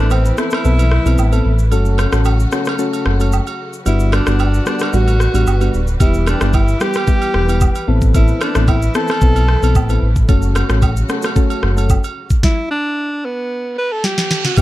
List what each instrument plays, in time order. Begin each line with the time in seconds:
Already playing: string section E3 A3 E4 B4, alto saxophone D4
0.00 sub bass A1, synth keys B3 C4 E4 A4
0.10 alto saxophone C4, high agogo, low woodblock, shaker
0.25 shaker
0.37 synth keys B3 C4 E4 A4, alto saxophone E4, cross-stick, shaker
0.51 cross-stick, high agogo, shaker
0.65 sub bass B1, synth keys B3 C4 E4 A4, shaker
0.79 high agogo, shaker
0.91 cross-stick
1.05 sub bass B1, synth keys B3 C4 E4 A4, high agogo, shaker
1.18 sub bass A1, low woodblock, shaker
1.32 synth keys B3 C4 E4 A4, high agogo, shaker
1.45 sub bass A1
1.59 shaker
1.72 sub bass F#1, string section C#3 F#3 F#4, synth keys A3 C#4 F#4 A4, high agogo, shaker
1.85 shaker
1.98 cross-stick, high agogo, shaker
2.12 sub bass A1, synth keys A3 C#4 F#4 A4, cross-stick, shaker
2.25 high agogo, low woodblock, shaker
2.40 shaker
2.52 synth keys A3 C#4 F#4 A4, cross-stick, shaker
2.65 cross-stick, high agogo, shaker
2.79 synth keys A3 C#4 F#4 A4, shaker
2.93 high agogo, shaker
3.06 sub bass F#1, cross-stick
3.19 synth keys A3 C#4 F#4 A4, high agogo, shaker
3.32 low woodblock, shaker
3.47 high agogo, shaker
3.73 shaker
3.86 sub bass G1, string section D3 G3 F#4 B4, synth keys G3 B3 D4 F#4, alto saxophone E4, high agogo, shaker
3.99 shaker
4.12 alto saxophone D4, cross-stick, high agogo, shaker
4.26 sub bass G1, synth keys G3 B3 D4 F#4, cross-stick, shaker
4.39 high agogo, low woodblock, shaker
4.54 shaker
4.66 synth keys G3 B3 D4 F#4, alto saxophone D4, cross-stick, shaker
4.79 cross-stick, high agogo, shaker
4.93 sub bass A1, synth keys G3 B3 D4 F#4, alto saxophone F#4, shaker
5.08 high agogo, shaker
5.20 cross-stick, shaker
5.34 sub bass A1, synth keys G3 B3 D4 F#4, high agogo, shaker
5.47 sub bass G1, low woodblock, shaker
5.61 synth keys G3 B3 D4 F#4, high agogo, shaker
5.74 sub bass D1, shaker
5.87 shaker
6.00 sub bass E1, string section E3 G4, synth keys G3 B3 E4 G4, alto saxophone E4, kick, high agogo, shaker
6.14 shaker
6.26 alto saxophone D4, cross-stick, high agogo, shaker
6.41 sub bass G1, synth keys G3 B3 E4 G4, cross-stick, shaker
6.53 alto saxophone E4, kick, high agogo, low woodblock, shaker
6.68 shaker
6.80 synth keys G3 B3 E4 G4, alto saxophone G4, cross-stick, shaker
6.94 cross-stick, high agogo, shaker
7.07 synth keys G3 B3 E4 G4, kick, shaker
7.22 high agogo, shaker
7.34 sub bass E1, cross-stick
7.48 synth keys G3 B3 E4 G4, high agogo, shaker
7.61 kick, low woodblock, shaker
7.75 high agogo, shaker
7.88 sub bass A1, string section E3 A3 E4, synth keys B3 C4 E4 A4
8.01 kick, shaker
8.14 synth keys B3 C4 E4 A4, alto saxophone E4, kick, high agogo, shaker
8.28 shaker
8.41 alto saxophone D4, cross-stick, high agogo, shaker
8.55 sub bass A1, synth keys B3 C4 E4 A4, cross-stick, shaker
8.67 alto saxophone E4, kick, high agogo, low woodblock, shaker
8.82 shaker
8.94 synth keys B3 C4 E4 A4, alto saxophone A4, cross-stick, shaker
9.08 cross-stick, high agogo, shaker
9.21 sub bass B1, synth keys B3 C4 E4 A4, kick, shaker
9.36 high agogo, shaker
9.48 cross-stick
9.62 sub bass B1, synth keys B3 C4 E4 A4, high agogo, shaker
9.75 sub bass A1, kick, low woodblock, shaker
9.89 synth keys B3 C4 E4 A4, high agogo, shaker
10.02 sub bass A1
10.16 kick, shaker
10.28 sub bass F#1, string section C#3 F#3 F#4, synth keys A3 C#4 F#4 A4, kick, high agogo, shaker
10.42 shaker
10.55 cross-stick, high agogo, shaker
10.69 sub bass A1, synth keys A3 C#4 F#4 A4, cross-stick, shaker
10.82 kick, high agogo, low woodblock, shaker
10.97 shaker
11.09 synth keys A3 C#4 F#4 A4, cross-stick, shaker
11.22 cross-stick, high agogo, shaker
11.36 synth keys A3 C#4 F#4 A4, kick, shaker
11.50 high agogo, shaker
11.63 sub bass F#1, cross-stick
11.76 synth keys A3 C#4 F#4 A4, high agogo, shaker
11.89 kick, low woodblock, shaker
12.04 high agogo, shaker
12.30 kick, shaker
12.43 alto saxophone E4, kick, snare
12.71 alto saxophone D4
13.25 alto saxophone B3
13.50 reverse cymbal
13.78 alto saxophone B4
13.92 alto saxophone A4
14.04 alto saxophone G4, snare
14.18 snare
14.31 snare
14.45 alto saxophone F#4, snare
14.57 sub bass E1, string section E3 G3 G4 B4, synth keys G3 B3 E4 G4, alto saxophone G4, kick, high agogo, shaker